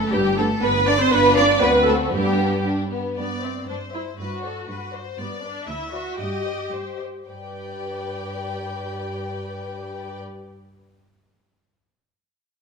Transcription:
Already playing: cello section A3, violin section A4, viola section A4
0.12 double bass section G1, cello section G3, violin section B3 D4 G4, viola section G4
0.37 cello section A3, violin section B3 D4 A4, viola section A4
0.62 double bass section G1, violin section B3 D4 B4, cello section B3, viola section B4
0.86 violin section B3 D4 D5, cello section D4, viola section D5
0.99 cello section C4, viola section C5, violin section C5
1.11 double bass section G1, cello section B3, violin section D4 F4 B4, viola section B4
1.36 cello section D4, viola section D5, violin section D5
1.61 double bass section D2, cello section B3, violin section C4 F#4 B4, viola section B4
1.88 cello section A3, violin section A4, viola section A4
2.13 double bass section G2, cello section G3, violin section B3 D4 G4, viola section G4
2.66 violin section D4
2.91 violin section B3
3.17 cello section G2, viola section B3, violin section D5
3.43 viola section C4, violin section C5 E5
3.69 cello section G2, viola section D4, violin section C5
3.93 viola section E4, violin section C5 E5
4.19 cello section G2, viola section F#4, violin section B4
4.43 violin section A4 C5 D5
4.69 cello section G2, violin section B4
4.93 violin section C5 D5
5.18 cello section G2, viola section B3, violin section D5
5.43 viola section D4, violin section B4 D5
5.67 cello section D2, viola section E4, violin section E5
5.92 viola section F#4, violin section B4 D5
6.18 cello section G2, viola section G4, violin section D#5
6.46 violin section C5 D#5
6.72 cello section G2, violin section C5
7.00 violin section C5 D#5
7.27 cello section G2, viola section G4, violin section B4 D5 G5

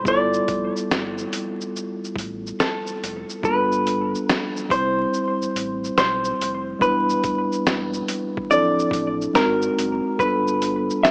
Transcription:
0.04 sub bass G1, tine electric piano G3 B3 E4 F4, kick, shaker
0.08 tine electric piano A4, hollow-body jazz guitar D5
0.34 shaker
0.48 sub bass F1, kick, closed hi-hat, shaker
0.77 shaker
0.90 sub bass G1, snare, shaker
1.18 shaker
1.33 closed hi-hat, shaker
1.61 shaker
1.67 hollow-body jazz guitar C5
1.76 shaker
2.04 shaker
2.16 sub bass A1, kick, closed hi-hat, shaker
2.47 shaker
2.60 hollow-body jazz guitar A4, snare, shaker
2.87 shaker
3.02 sub bass F1, closed hi-hat, shaker
3.29 shaker
3.43 sub bass G1, tine electric piano G3 A#3 D4 F4 A4, hollow-body jazz guitar B4, kick, shaker
3.50 tine electric piano B3
3.72 shaker
3.87 closed hi-hat, shaker
4.15 shaker
4.29 hollow-body jazz guitar A4, snare, shaker
4.57 shaker
4.68 sub bass C2, tine electric piano G3 C4 E4, hollow-body jazz guitar C5, kick, closed hi-hat, shaker
4.74 tine electric piano C5
5.14 shaker
5.41 sub bass A1, shaker
5.55 sub bass A1, closed hi-hat, shaker
5.84 shaker
5.97 sub bass B1, hollow-body jazz guitar C5, snare, shaker
6.24 shaker
6.39 sub bass F1, closed hi-hat, shaker
6.79 sub bass E1, tine electric piano G3 B3 D4 E4, hollow-body jazz guitar B4, kick, shaker
6.84 tine electric piano B4
7.09 shaker
7.24 sub bass D1, kick, closed hi-hat, shaker
7.52 shaker
7.66 sub bass E1, snare, shaker
7.94 shaker
8.08 closed hi-hat, shaker
8.37 kick
8.50 sub bass D1, tine electric piano E3 C4 D4 E4 A4, hollow-body jazz guitar D5, shaker
8.57 tine electric piano F3
8.79 shaker
8.91 sub bass A1, kick, closed hi-hat, shaker
9.21 shaker
9.34 sub bass G#1, tine electric piano G#3 C4 D#4 F#4 A#4, hollow-body jazz guitar A#4, snare, shaker
9.62 shaker
9.78 sub bass F#1, closed hi-hat, shaker
10.19 sub bass G1, tine electric piano G3 B3 D4 F4 A4, hollow-body jazz guitar B4, kick, shaker
10.48 shaker
10.62 closed hi-hat, shaker
10.90 shaker
11.03 hollow-body jazz guitar E5, snare, shaker

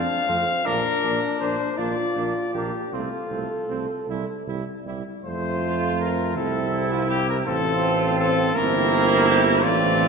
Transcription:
Already playing: french horn D4, trumpet F5
0.27 tuba F2, trombone A3, french horn C4, trumpet C4
0.65 tuba A#1, trombone A#3, trumpet D4 A#4, french horn D4
1.02 tuba A#1, trombone A#3, trumpet D4
1.40 tuba A#1, trombone A#3, trumpet D4 C5
1.77 tuba A#1, trombone A#3, trumpet D4 D5, french horn F4
2.16 tuba A#1, trombone A#3, trumpet D4
2.54 tuba A#1, trombone A#3, trumpet D4 G4
2.92 tuba C2, trombone A3, trumpet C4 F4, french horn A4
3.31 tuba C2, trombone A3, trumpet C4
3.70 tuba C2, trombone A3, trumpet C4
4.08 tuba C2, trombone G3, trumpet E4
4.47 tuba C2, trombone G3, trumpet E4
4.86 tuba C2, trombone G3, trumpet E4
5.25 tuba F2, french horn A3, trumpet F4 C5
6.00 trumpet A#4
6.36 tuba C2, french horn C4, trombone E4, trumpet E4 A4
6.92 trumpet F4
7.09 trumpet G4
7.29 trumpet A#4
7.46 tuba A1, french horn C4, trombone C4, trumpet F4 A4
8.19 trumpet A4
8.55 tuba G1, trombone A#3, french horn C4, trumpet E4 A#4
9.28 trumpet G4
9.46 trumpet A#4
9.63 tuba A1, trombone A3, french horn C4, trumpet F4 D5

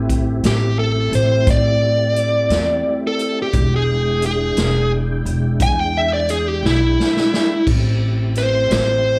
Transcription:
Already playing: upright bass A1, tonewheel organ A3 C4 E4 G4
0.09 kick, closed hi-hat
0.44 upright bass A1, lead electric guitar G4, snare, closed hi-hat
0.79 lead electric guitar A4
1.12 upright bass A1, lead electric guitar C5, closed hi-hat
1.47 upright bass A2, lead electric guitar D5, kick, closed hi-hat
2.16 closed hi-hat
2.50 upright bass E2, snare, closed hi-hat
3.07 lead electric guitar A4
3.19 closed hi-hat
3.42 lead electric guitar G4
3.53 upright bass E1, tonewheel organ G#3 D4 E4 G5, kick, closed hi-hat
3.76 lead electric guitar G#4
4.22 lead electric guitar G#4, closed hi-hat
4.57 upright bass E1, snare, closed hi-hat
5.25 upright bass E1, closed hi-hat
5.60 upright bass E2, lead electric guitar G#5, kick, closed hi-hat
5.80 lead electric guitar G5
5.98 lead electric guitar E5
6.13 lead electric guitar D5
6.29 lead electric guitar G#4, closed hi-hat
6.48 lead electric guitar G4
6.63 upright bass B1, lead electric guitar E4, snare
7.00 snare
7.17 snare
7.34 snare
7.66 upright bass A1, tonewheel organ A3 C4 E4 G4, kick, crash
8.35 lead electric guitar C5, snare, closed hi-hat
8.70 upright bass A1, lead electric guitar C5, snare, closed hi-hat

